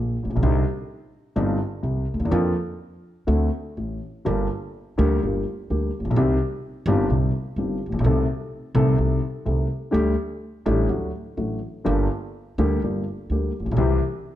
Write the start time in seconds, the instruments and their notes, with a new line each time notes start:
Already playing: upright bass A#1, grand piano A#1 A#2
0.23 grand piano A1, upright bass A1
0.30 grand piano A#1, upright bass A#1
0.36 grand piano B1, upright bass B1
0.43 upright bass C2, grand piano C2 C3 D3 G3 C4 D#4
1.36 upright bass G1, grand piano G1 G2 D3 G3 C4 D#4
1.83 grand piano C2 C3, upright bass C2
2.13 grand piano D2, upright bass D2
2.19 grand piano D#2, upright bass D#2
2.25 grand piano E2, upright bass E2
2.31 grand piano F2 D3 F3 A#3 F4, upright bass F2
3.27 grand piano D2 D3 A3 C4 F#4, upright bass D2
3.77 upright bass A1, grand piano A1 A2
4.25 grand piano G1 G2 D3 G3 A#3 G4, upright bass G1
4.98 grand piano D2 D3 G3 A#3 G4, upright bass D2
5.22 upright bass G1, grand piano G1 G2 D3 G3 A#3 G4
5.70 grand piano D2 D3 G3 A#3 G4, upright bass D2
5.99 grand piano A1, upright bass A1
6.05 grand piano A#1, upright bass A#1
6.10 grand piano B1, upright bass B1
6.16 upright bass C2, grand piano C2 C3 D#3 G3 C4 G4
6.86 upright bass G1, grand piano G1 G2 D#3 G3 C4 G4
7.10 upright bass C2, grand piano C2 C3 D#3 G3 C4 G4
7.56 upright bass G1, grand piano G1 G2 D#3 G3 C4 G4
7.86 upright bass A1, grand piano A1
7.92 upright bass A#1, grand piano A#1
7.99 upright bass B1, grand piano B1
8.04 upright bass C2, grand piano C2 C3 D#3 A3 C4 A4
8.75 upright bass C2, grand piano C2 C3 D#3 A3 C4 A4
8.98 upright bass C2, grand piano C2 C3 D#3 A3 C4 A4
9.45 grand piano C2 C3 D#3 A3 C4 A4, upright bass C2
9.91 grand piano D2 D3 G3 A3 G4, upright bass D2
10.66 grand piano A1 A2 D3 G3 A3 G4, upright bass A1
10.89 upright bass D2, grand piano D2 D3 F#3 A3 F#4
11.37 upright bass A1, grand piano A1 A2 D3 F#3 A3 F#4
11.84 grand piano G1 G2 D3 G3 A#3 G4, upright bass G1
12.58 upright bass D2, grand piano D2 D3 G3 A#3 G4
12.82 upright bass G1, grand piano G1 G2 D3 G3 A#3 G4
13.30 upright bass D2, grand piano D2 D3 G3 A#3 G4
13.60 upright bass A1, grand piano A1
13.66 grand piano A#1, upright bass A#1
13.71 upright bass B1, grand piano B1
13.77 upright bass C2, grand piano C2 C3 E3 G3 C4 G4